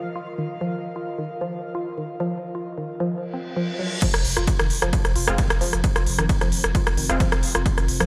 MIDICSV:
0, 0, Header, 1, 8, 480
1, 0, Start_track
1, 0, Tempo, 454545
1, 406, Time_signature, 4, 2, 24, 8
1, 8511, End_track
2, 0, Start_track
2, 0, Title_t, "Analog synth pad"
2, 0, Program_c, 0, 89
2, 0, Note_on_c, 0, 65, 84
2, 0, Note_on_c, 0, 70, 71
2, 0, Note_on_c, 0, 75, 65
2, 0, Note_on_c, 0, 77, 85
2, 4245, Note_off_c, 0, 75, 0
2, 4246, Note_off_c, 0, 65, 0
2, 4246, Note_off_c, 0, 70, 0
2, 4270, Note_off_c, 0, 77, 0
2, 8511, End_track
3, 0, Start_track
3, 0, Title_t, "Synth stab"
3, 0, Program_c, 1, 62
3, 5572, Note_on_c, 1, 60, 91
3, 5572, Note_on_c, 1, 65, 107
3, 5573, Note_on_c, 1, 56, 93
3, 5680, Note_off_c, 1, 56, 0
3, 5680, Note_off_c, 1, 60, 0
3, 5680, Note_off_c, 1, 65, 0
3, 7492, Note_on_c, 1, 60, 91
3, 7492, Note_on_c, 1, 65, 105
3, 7493, Note_on_c, 1, 56, 96
3, 7600, Note_off_c, 1, 56, 0
3, 7600, Note_off_c, 1, 60, 0
3, 7600, Note_off_c, 1, 65, 0
3, 8511, End_track
4, 0, Start_track
4, 0, Title_t, "Ambient pad"
4, 0, Program_c, 2, 92
4, 4247, Note_on_c, 2, 53, 81
4, 4247, Note_on_c, 2, 60, 84
4, 8511, Note_off_c, 2, 53, 0
4, 8511, Note_off_c, 2, 60, 0
4, 8511, End_track
5, 0, Start_track
5, 0, Title_t, "Synth arpeggio sound"
5, 0, Program_c, 3, 84
5, 165, Note_on_c, 3, 65, 81
5, 220, Note_off_c, 3, 65, 0
5, 405, Note_on_c, 3, 51, 79
5, 460, Note_off_c, 3, 51, 0
5, 646, Note_on_c, 3, 53, 98
5, 728, Note_off_c, 3, 53, 0
5, 1012, Note_on_c, 3, 65, 77
5, 1061, Note_off_c, 3, 65, 0
5, 1251, Note_on_c, 3, 51, 78
5, 1301, Note_off_c, 3, 51, 0
5, 1492, Note_on_c, 3, 53, 96
5, 1565, Note_off_c, 3, 53, 0
5, 1846, Note_on_c, 3, 65, 81
5, 1900, Note_off_c, 3, 65, 0
5, 2088, Note_on_c, 3, 51, 81
5, 2141, Note_off_c, 3, 51, 0
5, 2326, Note_on_c, 3, 53, 101
5, 2407, Note_off_c, 3, 53, 0
5, 2693, Note_on_c, 3, 65, 74
5, 2741, Note_off_c, 3, 65, 0
5, 2932, Note_on_c, 3, 51, 79
5, 2981, Note_off_c, 3, 51, 0
5, 3171, Note_on_c, 3, 53, 96
5, 3245, Note_off_c, 3, 53, 0
5, 3523, Note_on_c, 3, 60, 75
5, 3557, Note_off_c, 3, 60, 0
5, 3765, Note_on_c, 3, 53, 100
5, 3820, Note_off_c, 3, 53, 0
5, 4005, Note_on_c, 3, 54, 84
5, 4038, Note_off_c, 3, 54, 0
5, 4246, Note_on_c, 3, 53, 102
5, 4328, Note_off_c, 3, 53, 0
5, 4613, Note_on_c, 3, 65, 77
5, 4661, Note_off_c, 3, 65, 0
5, 4853, Note_on_c, 3, 51, 83
5, 4901, Note_off_c, 3, 51, 0
5, 5093, Note_on_c, 3, 53, 107
5, 5166, Note_off_c, 3, 53, 0
5, 5446, Note_on_c, 3, 65, 77
5, 5500, Note_off_c, 3, 65, 0
5, 5685, Note_on_c, 3, 51, 81
5, 5740, Note_off_c, 3, 51, 0
5, 5924, Note_on_c, 3, 53, 111
5, 6007, Note_off_c, 3, 53, 0
5, 6292, Note_on_c, 3, 65, 78
5, 6341, Note_off_c, 3, 65, 0
5, 6532, Note_on_c, 3, 51, 78
5, 6581, Note_off_c, 3, 51, 0
5, 6772, Note_on_c, 3, 53, 108
5, 6845, Note_off_c, 3, 53, 0
5, 7125, Note_on_c, 3, 65, 83
5, 7180, Note_off_c, 3, 65, 0
5, 7365, Note_on_c, 3, 51, 76
5, 7420, Note_off_c, 3, 51, 0
5, 7607, Note_on_c, 3, 53, 107
5, 7688, Note_off_c, 3, 53, 0
5, 7972, Note_on_c, 3, 65, 80
5, 8021, Note_off_c, 3, 65, 0
5, 8211, Note_on_c, 3, 51, 75
5, 8261, Note_off_c, 3, 51, 0
5, 8451, Note_on_c, 3, 53, 102
5, 8511, Note_off_c, 3, 53, 0
5, 8511, End_track
6, 0, Start_track
6, 0, Title_t, "Sub bass"
6, 0, Program_c, 4, 38
6, 4373, Note_on_c, 4, 29, 82
6, 4479, Note_off_c, 4, 29, 0
6, 4485, Note_on_c, 4, 29, 106
6, 4606, Note_off_c, 4, 29, 0
6, 4612, Note_on_c, 4, 29, 79
6, 4723, Note_off_c, 4, 29, 0
6, 4852, Note_on_c, 4, 29, 78
6, 4963, Note_off_c, 4, 29, 0
6, 5092, Note_on_c, 4, 29, 85
6, 5203, Note_off_c, 4, 29, 0
6, 5333, Note_on_c, 4, 29, 77
6, 5440, Note_off_c, 4, 29, 0
6, 5446, Note_on_c, 4, 29, 101
6, 5566, Note_off_c, 4, 29, 0
6, 5573, Note_on_c, 4, 29, 76
6, 5683, Note_off_c, 4, 29, 0
6, 5812, Note_on_c, 4, 29, 79
6, 5923, Note_off_c, 4, 29, 0
6, 6052, Note_on_c, 4, 29, 78
6, 6163, Note_off_c, 4, 29, 0
6, 6292, Note_on_c, 4, 29, 81
6, 6399, Note_off_c, 4, 29, 0
6, 6406, Note_on_c, 4, 29, 102
6, 6525, Note_off_c, 4, 29, 0
6, 6531, Note_on_c, 4, 29, 86
6, 6642, Note_off_c, 4, 29, 0
6, 6771, Note_on_c, 4, 29, 77
6, 6882, Note_off_c, 4, 29, 0
6, 7012, Note_on_c, 4, 29, 78
6, 7123, Note_off_c, 4, 29, 0
6, 7251, Note_on_c, 4, 29, 82
6, 7358, Note_off_c, 4, 29, 0
6, 7364, Note_on_c, 4, 29, 104
6, 7485, Note_off_c, 4, 29, 0
6, 7491, Note_on_c, 4, 29, 84
6, 7603, Note_off_c, 4, 29, 0
6, 7731, Note_on_c, 4, 29, 79
6, 7843, Note_off_c, 4, 29, 0
6, 7972, Note_on_c, 4, 29, 81
6, 8083, Note_off_c, 4, 29, 0
6, 8212, Note_on_c, 4, 29, 80
6, 8319, Note_off_c, 4, 29, 0
6, 8325, Note_on_c, 4, 29, 97
6, 8446, Note_off_c, 4, 29, 0
6, 8452, Note_on_c, 4, 29, 82
6, 8511, Note_off_c, 4, 29, 0
6, 8511, End_track
7, 0, Start_track
7, 0, Title_t, "Reverse cymbal"
7, 0, Program_c, 5, 119
7, 3285, Note_on_c, 5, 60, 79
7, 4245, Note_off_c, 5, 60, 0
7, 8511, End_track
8, 0, Start_track
8, 0, Title_t, "Drums"
8, 4244, Note_on_c, 9, 42, 83
8, 4244, Note_on_c, 9, 49, 100
8, 4244, Note_on_c, 9, 51, 64
8, 4246, Note_on_c, 9, 36, 120
8, 4350, Note_off_c, 9, 42, 0
8, 4350, Note_off_c, 9, 49, 0
8, 4350, Note_off_c, 9, 51, 0
8, 4352, Note_off_c, 9, 36, 0
8, 4371, Note_on_c, 9, 37, 93
8, 4371, Note_on_c, 9, 42, 58
8, 4477, Note_off_c, 9, 37, 0
8, 4477, Note_off_c, 9, 42, 0
8, 4484, Note_on_c, 9, 46, 104
8, 4590, Note_off_c, 9, 46, 0
8, 4611, Note_on_c, 9, 37, 69
8, 4611, Note_on_c, 9, 42, 58
8, 4717, Note_off_c, 9, 37, 0
8, 4717, Note_off_c, 9, 42, 0
8, 4725, Note_on_c, 9, 42, 89
8, 4725, Note_on_c, 9, 51, 76
8, 4726, Note_on_c, 9, 36, 120
8, 4830, Note_off_c, 9, 42, 0
8, 4830, Note_off_c, 9, 51, 0
8, 4832, Note_off_c, 9, 36, 0
8, 4852, Note_on_c, 9, 37, 94
8, 4852, Note_on_c, 9, 42, 54
8, 4958, Note_off_c, 9, 37, 0
8, 4958, Note_off_c, 9, 42, 0
8, 4965, Note_on_c, 9, 46, 108
8, 5070, Note_off_c, 9, 46, 0
8, 5092, Note_on_c, 9, 37, 88
8, 5092, Note_on_c, 9, 42, 55
8, 5198, Note_off_c, 9, 37, 0
8, 5198, Note_off_c, 9, 42, 0
8, 5205, Note_on_c, 9, 42, 81
8, 5205, Note_on_c, 9, 51, 70
8, 5206, Note_on_c, 9, 36, 120
8, 5310, Note_off_c, 9, 42, 0
8, 5310, Note_off_c, 9, 51, 0
8, 5311, Note_off_c, 9, 36, 0
8, 5331, Note_on_c, 9, 37, 67
8, 5331, Note_on_c, 9, 42, 57
8, 5437, Note_off_c, 9, 37, 0
8, 5437, Note_off_c, 9, 42, 0
8, 5444, Note_on_c, 9, 46, 106
8, 5550, Note_off_c, 9, 46, 0
8, 5571, Note_on_c, 9, 37, 98
8, 5571, Note_on_c, 9, 42, 56
8, 5676, Note_off_c, 9, 37, 0
8, 5676, Note_off_c, 9, 42, 0
8, 5684, Note_on_c, 9, 42, 89
8, 5684, Note_on_c, 9, 51, 72
8, 5686, Note_on_c, 9, 36, 124
8, 5790, Note_off_c, 9, 42, 0
8, 5790, Note_off_c, 9, 51, 0
8, 5791, Note_off_c, 9, 36, 0
8, 5811, Note_on_c, 9, 37, 98
8, 5811, Note_on_c, 9, 42, 57
8, 5917, Note_off_c, 9, 37, 0
8, 5917, Note_off_c, 9, 42, 0
8, 5924, Note_on_c, 9, 46, 107
8, 6030, Note_off_c, 9, 46, 0
8, 6051, Note_on_c, 9, 37, 68
8, 6051, Note_on_c, 9, 42, 60
8, 6157, Note_off_c, 9, 37, 0
8, 6157, Note_off_c, 9, 42, 0
8, 6165, Note_on_c, 9, 42, 80
8, 6165, Note_on_c, 9, 51, 65
8, 6166, Note_on_c, 9, 36, 120
8, 6270, Note_off_c, 9, 42, 0
8, 6270, Note_off_c, 9, 51, 0
8, 6271, Note_off_c, 9, 36, 0
8, 6292, Note_on_c, 9, 37, 87
8, 6292, Note_on_c, 9, 42, 55
8, 6397, Note_off_c, 9, 37, 0
8, 6397, Note_off_c, 9, 42, 0
8, 6405, Note_on_c, 9, 46, 107
8, 6510, Note_off_c, 9, 46, 0
8, 6532, Note_on_c, 9, 37, 94
8, 6532, Note_on_c, 9, 42, 58
8, 6638, Note_off_c, 9, 37, 0
8, 6638, Note_off_c, 9, 42, 0
8, 6646, Note_on_c, 9, 36, 127
8, 6646, Note_on_c, 9, 42, 88
8, 6646, Note_on_c, 9, 51, 70
8, 6751, Note_off_c, 9, 36, 0
8, 6751, Note_off_c, 9, 42, 0
8, 6751, Note_off_c, 9, 51, 0
8, 6773, Note_on_c, 9, 37, 64
8, 6773, Note_on_c, 9, 42, 53
8, 6878, Note_off_c, 9, 37, 0
8, 6878, Note_off_c, 9, 42, 0
8, 6886, Note_on_c, 9, 46, 112
8, 6991, Note_off_c, 9, 46, 0
8, 7012, Note_on_c, 9, 37, 90
8, 7012, Note_on_c, 9, 42, 55
8, 7118, Note_off_c, 9, 37, 0
8, 7118, Note_off_c, 9, 42, 0
8, 7126, Note_on_c, 9, 36, 123
8, 7126, Note_on_c, 9, 42, 82
8, 7126, Note_on_c, 9, 51, 69
8, 7231, Note_off_c, 9, 36, 0
8, 7231, Note_off_c, 9, 42, 0
8, 7231, Note_off_c, 9, 51, 0
8, 7253, Note_on_c, 9, 37, 91
8, 7253, Note_on_c, 9, 42, 59
8, 7358, Note_off_c, 9, 37, 0
8, 7358, Note_off_c, 9, 42, 0
8, 7365, Note_on_c, 9, 46, 111
8, 7471, Note_off_c, 9, 46, 0
8, 7493, Note_on_c, 9, 37, 62
8, 7493, Note_on_c, 9, 42, 56
8, 7598, Note_off_c, 9, 37, 0
8, 7598, Note_off_c, 9, 42, 0
8, 7605, Note_on_c, 9, 36, 127
8, 7606, Note_on_c, 9, 42, 84
8, 7606, Note_on_c, 9, 51, 70
8, 7711, Note_off_c, 9, 36, 0
8, 7711, Note_off_c, 9, 42, 0
8, 7711, Note_off_c, 9, 51, 0
8, 7732, Note_on_c, 9, 37, 94
8, 7732, Note_on_c, 9, 42, 58
8, 7838, Note_off_c, 9, 37, 0
8, 7838, Note_off_c, 9, 42, 0
8, 7845, Note_on_c, 9, 46, 114
8, 7950, Note_off_c, 9, 46, 0
8, 7972, Note_on_c, 9, 37, 93
8, 7972, Note_on_c, 9, 42, 56
8, 8078, Note_off_c, 9, 37, 0
8, 8078, Note_off_c, 9, 42, 0
8, 8085, Note_on_c, 9, 36, 126
8, 8085, Note_on_c, 9, 42, 75
8, 8085, Note_on_c, 9, 51, 61
8, 8191, Note_off_c, 9, 36, 0
8, 8191, Note_off_c, 9, 42, 0
8, 8191, Note_off_c, 9, 51, 0
8, 8213, Note_on_c, 9, 37, 63
8, 8213, Note_on_c, 9, 42, 58
8, 8318, Note_off_c, 9, 37, 0
8, 8318, Note_off_c, 9, 42, 0
8, 8325, Note_on_c, 9, 46, 110
8, 8431, Note_off_c, 9, 46, 0
8, 8453, Note_on_c, 9, 37, 92
8, 8453, Note_on_c, 9, 42, 56
8, 8511, Note_off_c, 9, 37, 0
8, 8511, Note_off_c, 9, 42, 0
8, 8511, End_track
0, 0, End_of_file